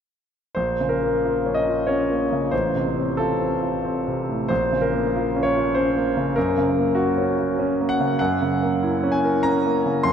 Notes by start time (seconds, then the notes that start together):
0.55 A#1 C5
0.80 C#3
0.89 A#4
1.03 A#3
1.25 F4
1.46 C#4
1.55 D#5
1.68 F4
1.87 C#4 C#5
2.11 A#3
2.32 C#3
2.51 A1 C5
2.75 C3
2.98 C4
3.17 F4 A4
3.40 C4
3.62 F4
3.85 C4
4.07 C3
4.29 A2
4.48 A#1 C5
4.72 C#3
4.82 A#4
4.94 A#3
5.16 F4
5.36 C#4
5.43 C#5
5.56 F4
5.75 C#4 C5
5.96 A#3
6.17 C#3
6.36 F#2 A#4
6.57 C#3
6.78 A#3
6.95 F#4
7.18 C#4
7.38 F#4
7.59 C#4
7.80 A#3
7.89 F#5
8.00 C#3
8.19 F#2 F#5
8.42 C#3
8.62 A#3
8.83 E4
9.04 C#4
9.12 G#5
9.24 A#4
9.43 C#4 A#5
9.66 A#3
9.86 C#3
10.03 F2 C6